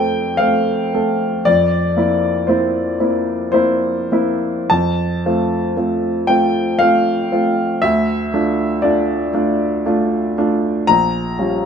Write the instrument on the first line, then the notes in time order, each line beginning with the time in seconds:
upright piano
Already playing: F2 A3 C4 A4 G5 A5
0.37 A3 C4 A4 F5
0.94 A3 C4 A4
1.45 F2 D5
1.97 A#3 C4 E4
2.47 A#3 C4 E4 C5
3.00 A#3 C4 E4
3.52 A#3 C4 E4 C5
4.12 A#3 C4 E4
4.70 F2 A5
5.26 A3 C4 F4
5.77 A3 C4 F4
6.27 A3 C4 F4 G5
6.79 A3 C4 F4 F5
7.32 A3 C4 F4
7.82 D2 E5
8.34 A3 D4 F4
8.82 A3 D4 F4 D5
9.33 A3 D4 F4
9.86 A3 D4 F4
10.38 A3 D4 F4
10.87 A#1 A#5
11.39 G3 C#4 F4